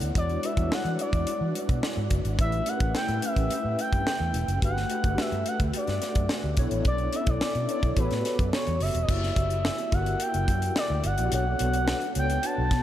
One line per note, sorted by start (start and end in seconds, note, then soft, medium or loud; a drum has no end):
0.00 0.12 D2 medium
0.00 0.17 B3 medium
0.00 0.17 C#4 soft
0.00 0.15 D4 medium
0.00 0.15 E4 medium
0.00 0.17 A4 medium
0.00 0.17 B4 medium
0.00 0.16 C#5 medium
0.00 closed hi-hat soft
0.15 0.37 E2 medium
0.15 0.41 G#3 medium
0.15 0.41 D4 medium
0.15 0.41 E4 medium
0.15 0.42 F#4 medium
0.15 0.42 C#5 medium
0.15 0.47 D5 loud
0.15 kick loud
0.15 closed hi-hat medium
0.29 closed hi-hat soft
0.43 0.56 G#3 medium
0.43 0.56 D4 medium
0.43 0.56 E4 medium
0.43 0.56 F#4 medium
0.43 0.57 B4 medium
0.43 0.75 E5 medium
0.43 closed hi-hat medium
0.56 0.68 E2 medium
0.56 0.63 G3 medium
0.56 1.61 D4 medium
0.56 1.61 E4 medium
0.56 1.61 F#4 medium
0.56 1.61 D5 medium
0.56 kick medium
0.56 closed hi-hat soft
0.63 1.64 G#3 medium
0.71 1.00 F#5 loud
0.71 muted fingered electric bass stroke soft
0.71 snare loud
0.85 0.96 E3 medium
0.85 closed hi-hat soft
0.99 1.80 D5 medium
0.99 closed hi-hat medium
1.13 1.24 E2 medium
1.13 kick medium
1.13 closed hi-hat soft
1.27 muted fingered electric bass stroke soft
1.27 closed hi-hat medium
1.41 1.51 E3 medium
1.55 closed hi-hat medium
1.69 1.80 B2 medium
1.69 kick medium
1.69 closed hi-hat soft
1.83 snare loud
1.97 2.07 G#2 medium
2.10 2.21 F#1 medium
2.10 kick medium
2.10 closed hi-hat medium
2.25 2.35 G#1 medium
2.25 closed hi-hat soft
2.38 2.60 A1 loud
2.38 2.65 A3 medium
2.38 2.65 C#4 medium
2.38 2.65 E4 medium
2.38 2.65 G4 medium
2.38 2.65 B4 medium
2.38 2.70 E5 loud
2.38 kick loud
2.38 closed hi-hat medium
2.52 closed hi-hat soft
2.66 3.18 A3 medium
2.66 3.19 C#4 medium
2.66 3.19 E4 medium
2.66 3.19 G4 medium
2.66 2.74 A#4 medium
2.66 2.95 F#5 loud
2.66 closed hi-hat medium
2.74 3.22 B4 medium
2.80 2.91 A1 medium
2.80 kick loud
2.80 closed hi-hat soft
2.95 3.26 G5 loud
2.95 muted fingered electric bass stroke soft
2.95 snare loud
3.08 3.19 A2 medium
3.08 closed hi-hat soft
3.22 4.26 A3 medium
3.22 4.26 C#4 medium
3.22 4.27 E4 medium
3.22 4.27 G4 medium
3.22 4.27 B4 medium
3.22 3.79 E5 loud
3.22 closed hi-hat medium
3.36 3.47 A1 medium
3.36 kick medium
3.36 closed hi-hat soft
3.51 closed hi-hat medium
3.65 3.75 A2 medium
3.79 4.59 G5 loud
3.79 closed hi-hat medium
3.93 4.03 G2 medium
3.93 kick medium
3.93 closed hi-hat soft
4.07 snare loud
4.20 4.31 E2 medium
4.34 4.45 E1 medium
4.34 closed hi-hat medium
4.48 4.59 F#1 medium
4.48 closed hi-hat soft
4.62 4.83 G1 loud
4.62 4.88 A3 medium
4.62 4.88 D4 medium
4.62 4.88 F#4 medium
4.62 4.88 G4 medium
4.62 4.88 B4 medium
4.62 5.22 F#5 loud
4.62 kick loud
4.62 closed hi-hat medium
4.77 snare soft
4.90 5.02 A3 medium
4.90 5.03 D4 medium
4.90 5.03 F#4 medium
4.90 5.03 G4 medium
4.90 5.04 B4 medium
4.90 closed hi-hat medium
5.04 5.15 G1 medium
5.04 6.08 A3 medium
5.04 6.08 D4 medium
5.04 6.08 F#4 medium
5.04 6.08 G4 medium
5.04 6.08 A4 medium
5.04 kick medium
5.04 closed hi-hat soft
5.18 5.47 E5 medium
5.18 muted fingered electric bass stroke soft
5.18 snare loud
5.32 5.43 G2 medium
5.32 closed hi-hat soft
5.46 5.60 F#5 medium
5.46 closed hi-hat medium
5.60 5.71 D2 medium
5.60 kick medium
5.60 closed hi-hat soft
5.74 6.55 D5 medium
5.74 muted fingered electric bass stroke soft
5.74 closed hi-hat medium
5.87 5.99 G2 medium
5.87 snare soft
5.87 closed hi-hat soft
6.02 snare soft
6.02 closed hi-hat medium
6.15 6.26 F#2 medium
6.15 kick medium
6.15 closed hi-hat medium
6.29 snare loud
6.44 6.54 D2 medium
6.57 6.68 B1 medium
6.57 7.09 B3 medium
6.57 7.09 D4 medium
6.57 7.10 E4 medium
6.57 7.10 A4 medium
6.57 7.10 C#5 loud
6.57 kick medium
6.57 closed hi-hat medium
6.71 6.82 A1 medium
6.71 closed hi-hat soft
6.85 7.07 B1 loud
6.85 7.17 D5 loud
6.85 kick loud
6.85 closed hi-hat medium
6.98 closed hi-hat soft
7.13 7.65 B3 medium
7.13 7.20 C#4 soft
7.13 7.66 E4 medium
7.13 7.66 A4 medium
7.13 7.66 D5 medium
7.13 7.31 E5 loud
7.13 closed hi-hat medium
7.20 7.67 D4 medium
7.27 7.38 B1 medium
7.27 7.70 D5 medium
7.27 kick loud
7.27 closed hi-hat soft
7.41 muted fingered electric bass stroke soft
7.41 snare loud
7.55 7.66 B2 medium
7.55 closed hi-hat soft
7.68 7.95 B3 medium
7.68 7.97 D4 medium
7.68 7.97 E4 medium
7.68 7.96 A4 medium
7.68 7.97 C#5 medium
7.68 7.96 D5 medium
7.68 closed hi-hat medium
7.83 7.94 B1 medium
7.83 kick medium
7.83 closed hi-hat soft
7.96 8.08 A1 medium
7.96 9.01 B3 medium
7.96 9.01 F#4 medium
7.96 9.01 G4 medium
7.96 9.01 A4 medium
7.96 8.04 B4 medium
7.96 8.50 B4 medium
7.96 kick medium
7.96 closed hi-hat medium
8.04 9.05 C#5 medium
8.11 8.22 A2 medium
8.11 snare soft
8.11 closed hi-hat soft
8.25 snare soft
8.25 closed hi-hat medium
8.39 8.50 F#2 medium
8.39 kick medium
8.39 closed hi-hat soft
8.53 8.83 C#5 medium
8.53 snare loud
8.67 8.78 E2 medium
8.67 closed hi-hat soft
8.80 8.91 F#1 medium
8.80 9.02 E5 medium
8.80 open hi-hat medium
8.95 9.05 E1 medium
8.95 closed hi-hat soft
9.02 9.11 D#5 medium
9.07 9.30 F#1 medium
9.07 9.86 A#3 medium
9.07 9.86 E4 medium
9.07 9.86 F#4 medium
9.07 9.87 G4 medium
9.07 9.87 D5 medium
9.07 9.95 E5 medium
9.07 kick loud
9.07 crash medium
9.23 snare soft
9.36 9.68 F#1 medium
9.36 kick medium
9.36 closed hi-hat medium
9.50 closed hi-hat soft
9.65 snare loud
9.78 closed hi-hat soft
9.91 10.14 G1 medium
9.91 10.96 A#3 medium
9.91 10.96 E4 medium
9.91 10.96 F#4 medium
9.91 10.96 G4 medium
9.91 10.96 A#4 medium
9.91 10.24 F#5 medium
9.91 kick medium
9.91 closed hi-hat medium
10.06 closed hi-hat soft
10.20 10.77 G5 loud
10.20 closed hi-hat medium
10.34 10.45 F#1 medium
10.34 closed hi-hat soft
10.48 10.69 F#2 medium
10.48 kick medium
10.48 closed hi-hat medium
10.62 closed hi-hat soft
10.76 11.03 D5 medium
10.76 snare loud
10.90 11.01 D2 medium
11.04 11.15 G1 medium
11.04 11.31 F#5 medium
11.04 closed hi-hat medium
11.18 11.29 A#1 medium
11.18 11.31 A#3 medium
11.18 11.31 E4 medium
11.18 11.31 F#4 medium
11.18 11.31 G4 medium
11.18 11.31 D5 medium
11.18 closed hi-hat soft
11.31 11.53 B1 loud
11.31 11.58 B3 medium
11.31 11.58 D4 medium
11.31 11.58 F#4 medium
11.31 11.58 A4 medium
11.31 11.58 C#5 medium
11.31 12.12 F#5 loud
11.31 closed hi-hat medium
11.59 11.92 B1 medium
11.59 12.12 B3 medium
11.59 12.12 D4 medium
11.59 12.12 F#4 medium
11.59 12.12 A4 medium
11.59 12.12 B4 medium
11.59 closed hi-hat medium
11.73 closed hi-hat soft
11.88 snare loud
12.01 closed hi-hat soft
12.15 12.37 C#2 medium
12.15 12.83 B3 medium
12.15 12.83 D4 medium
12.15 12.83 F#4 medium
12.15 12.83 A4 medium
12.15 12.83 C#5 medium
12.15 12.47 G5 loud
12.15 closed hi-hat medium
12.30 closed hi-hat soft
12.43 12.83 A5 loud
12.43 closed hi-hat medium
12.58 12.68 B1 medium
12.71 12.83 B2 medium
12.71 kick medium
12.71 snare soft
12.71 closed hi-hat medium